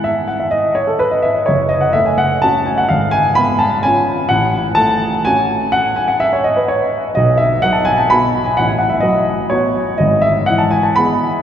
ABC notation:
X:1
M:3/4
L:1/16
Q:1/4=126
K:E
V:1 name="Upright piano"
e2 f e d2 c A B d e d | c2 d f e g f2 a2 g f | ^e2 g2 b2 a2 g4 | f4 a4 g4 |
f2 g f e c d B c2 z2 | d2 e2 f a g a b3 g | f g f e d4 c4 | d2 e2 f a g a b4 |]
V:2 name="Upright piano"
[B,E]12 | F,,,4 A,4 [CF]4 | G,,,4 B,4 [C^E]4 | A,,,4 A,4 [CF]4- |
[CF]12 | B,,,4 F,4 [B,F]4 | A,,,4 F,4 [B,F]4 | G,,,4 E,4 [B,G]4 |]